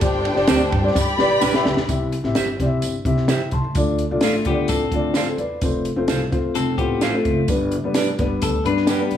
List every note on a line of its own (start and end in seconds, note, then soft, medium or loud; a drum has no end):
0.00 0.28 G1 loud
0.00 0.93 D4 medium
0.00 0.26 G4 medium
0.00 0.26 C5 medium
0.00 0.93 C5 medium
0.00 0.27 D5 medium
0.00 0.93 G5 medium
0.00 kick loud
0.00 hi-hat pedal medium
0.00 ride medium
0.00 tambourine medium
0.25 ride medium
0.34 0.45 G1 medium
0.34 0.69 G4 medium
0.34 0.69 C5 medium
0.34 0.70 D5 loud
0.34 snare soft
0.47 0.66 D2 loud
0.47 0.60 C4 loud
0.47 0.60 G4 loud
0.47 0.61 C5 medium
0.47 0.61 D5 loud
0.47 snare loud
0.47 ride medium
0.47 tambourine loud
0.72 0.90 G2 loud
0.72 kick medium
0.72 ride medium
0.82 0.94 G4 medium
0.82 0.95 C5 medium
0.82 0.95 D5 loud
0.95 1.13 G2 loud
0.95 1.87 G4 medium
0.95 1.87 D5 medium
0.95 1.87 B5 loud
0.95 kick medium
0.95 snare medium
0.95 tambourine medium
1.17 1.36 A1 medium
1.17 1.43 G4 medium
1.17 1.43 B4 medium
1.17 1.44 D5 loud
1.17 snare medium
1.41 1.51 B1 medium
1.41 1.53 D4 medium
1.41 1.54 G4 medium
1.41 1.54 B4 medium
1.41 1.54 D5 medium
1.41 snare medium
1.41 tambourine loud
1.53 1.78 G4 medium
1.53 1.79 B4 medium
1.53 1.79 E5 medium
1.53 snare medium
1.65 1.74 D2 loud
1.65 snare medium
1.77 1.86 F2 medium
1.77 snare medium
1.87 2.15 C2 loud
1.87 2.13 C4 medium
1.87 2.14 E4 medium
1.87 2.14 G4 medium
1.87 2.14 E5 medium
1.87 kick medium
1.87 closed hi-hat medium
1.87 tambourine medium
2.12 closed hi-hat medium
2.23 2.33 A1 medium
2.23 2.49 C4 medium
2.23 2.49 E4 medium
2.23 2.49 G4 medium
2.23 2.49 E5 medium
2.23 snare soft
2.35 2.53 G1 loud
2.35 2.47 E4 medium
2.35 2.47 G4 medium
2.35 2.47 C5 medium
2.35 2.48 E5 medium
2.35 snare loud
2.35 closed hi-hat loud
2.35 tambourine loud
2.59 2.77 C3 medium
2.59 2.92 C4 medium
2.59 2.92 E4 medium
2.59 2.93 G4 medium
2.59 2.66 D5 medium
2.59 kick medium
2.59 snare soft
2.59 closed hi-hat medium
2.66 2.96 E5 medium
2.82 3.00 G1 medium
2.82 closed hi-hat medium
2.82 tambourine medium
3.05 3.32 C3 loud
3.05 3.30 C4 medium
3.05 3.30 E4 medium
3.05 3.31 G4 medium
3.05 3.28 E5 medium
3.05 kick medium
3.05 closed hi-hat medium
3.17 snare soft
3.28 3.41 E4 medium
3.28 3.41 G4 medium
3.28 3.41 C5 medium
3.28 3.52 E5 medium
3.28 3.41 E5 medium
3.28 3.51 G5 medium
3.28 snare medium
3.28 closed hi-hat medium
3.28 tambourine medium
3.51 3.61 C2 medium
3.51 3.98 A5 medium
3.51 3.97 C6 medium
3.51 kick medium
3.51 closed hi-hat medium
3.64 3.73 D2 medium
3.75 4.02 D2 loud
3.75 4.01 A3 medium
3.75 4.01 D4 medium
3.75 4.01 F4 medium
3.75 4.01 D5 medium
3.75 kick medium
3.75 closed hi-hat medium
3.75 tambourine medium
3.99 closed hi-hat medium
4.10 4.23 B1 medium
4.10 4.35 A3 medium
4.10 4.36 D4 medium
4.10 4.36 F4 medium
4.10 4.36 D5 medium
4.21 4.40 A1 medium
4.21 4.45 A3 medium
4.21 4.34 F4 medium
4.21 4.45 F4 medium
4.21 4.34 A4 medium
4.21 4.34 D5 medium
4.21 4.35 F5 loud
4.21 snare loud
4.21 closed hi-hat medium
4.21 tambourine medium
4.45 4.63 D3 medium
4.45 4.79 A3 medium
4.45 4.68 B3 medium
4.45 4.79 D4 medium
4.45 4.79 F4 medium
4.45 4.68 G4 medium
4.45 4.52 C5 medium
4.45 kick medium
4.45 closed hi-hat medium
4.53 4.82 D5 medium
4.68 4.87 A1 loud
4.68 5.36 C4 medium
4.68 5.36 A4 medium
4.68 kick medium
4.68 closed hi-hat loud
4.68 tambourine medium
4.92 5.27 D3 medium
4.92 5.18 A3 medium
4.92 5.18 D4 medium
4.92 5.18 F4 medium
4.92 5.17 D5 medium
4.92 kick medium
4.92 closed hi-hat medium
5.14 5.27 F4 medium
5.14 5.27 A4 medium
5.14 5.39 A4 medium
5.14 5.39 C5 medium
5.14 5.28 D5 medium
5.14 5.28 F5 medium
5.14 snare medium
5.14 closed hi-hat medium
5.14 tambourine medium
5.38 5.56 E2 medium
5.38 5.84 B4 medium
5.38 5.83 D5 medium
5.38 closed hi-hat soft
5.61 5.89 F1 loud
5.61 5.87 A3 medium
5.61 5.87 C4 medium
5.61 5.87 F4 medium
5.61 5.88 C5 medium
5.61 kick loud
5.61 closed hi-hat medium
5.61 tambourine medium
5.85 closed hi-hat medium
5.96 6.05 F1 medium
5.96 6.22 A3 medium
5.96 6.22 C4 medium
5.96 6.22 F4 medium
5.96 6.22 C5 medium
6.08 6.26 C2 medium
6.08 6.20 F4 medium
6.08 6.20 A4 medium
6.08 6.21 C5 medium
6.08 6.21 F5 medium
6.08 snare loud
6.08 closed hi-hat medium
6.08 tambourine loud
6.30 6.50 F2 medium
6.30 6.64 A3 medium
6.30 6.65 C4 medium
6.30 6.65 F4 medium
6.30 6.65 C5 medium
6.30 kick medium
6.30 closed hi-hat medium
6.55 6.73 F1 loud
6.55 6.78 C4 medium
6.55 6.77 A4 medium
6.55 closed hi-hat medium
6.55 tambourine medium
6.77 7.13 A1 medium
6.77 7.03 A3 medium
6.77 7.01 B3 medium
6.77 7.04 C4 medium
6.77 7.04 F4 medium
6.77 7.01 G4 medium
6.77 7.04 C5 medium
6.77 kick medium
6.77 closed hi-hat medium
7.01 7.47 A3 medium
7.01 7.46 F4 medium
7.01 7.14 F4 medium
7.01 7.14 A4 medium
7.01 7.14 C5 medium
7.01 7.14 F5 loud
7.01 snare loud
7.01 closed hi-hat medium
7.01 tambourine medium
7.13 7.38 A3 medium
7.13 7.39 C4 medium
7.13 7.39 F4 medium
7.13 7.39 C5 medium
7.25 7.43 F#1 loud
7.25 kick medium
7.25 closed hi-hat medium
7.48 7.75 G1 loud
7.48 7.73 G3 medium
7.48 7.73 B3 medium
7.48 7.74 D4 medium
7.48 7.74 B4 medium
7.48 kick loud
7.48 closed hi-hat medium
7.48 tambourine medium
7.71 closed hi-hat medium
7.83 8.10 F1 medium
7.83 8.09 G3 medium
7.83 8.08 B3 medium
7.83 8.09 D4 medium
7.83 8.09 B4 medium
7.94 8.07 D4 medium
7.94 8.07 G4 medium
7.94 8.07 B4 medium
7.94 8.08 D5 medium
7.94 snare loud
7.94 closed hi-hat loud
7.94 tambourine loud
8.18 8.36 G1 medium
8.18 8.51 G3 medium
8.18 8.52 B3 medium
8.18 8.52 D4 medium
8.18 8.52 B4 medium
8.18 kick medium
8.18 snare soft
8.18 closed hi-hat medium
8.42 8.60 D2 medium
8.42 8.64 A4 medium
8.42 kick loud
8.42 closed hi-hat loud
8.42 tambourine medium
8.64 9.00 G2 loud
8.64 8.89 G3 medium
8.64 8.90 B3 medium
8.64 8.90 D4 medium
8.64 8.88 D4 medium
8.64 8.90 B4 medium
8.64 8.88 B4 medium
8.64 closed hi-hat medium
8.77 snare soft
8.87 9.17 B3 soft
8.87 9.00 D4 medium
8.87 9.17 G4 medium
8.87 9.00 G4 medium
8.87 9.00 B4 medium
8.87 9.01 D5 medium
8.87 snare loud
8.87 closed hi-hat medium
8.87 tambourine medium
8.98 9.17 G3 medium
8.98 9.17 B3 medium
8.98 9.17 D4 medium
8.98 9.17 B4 medium
9.11 9.17 B1 medium
9.11 closed hi-hat soft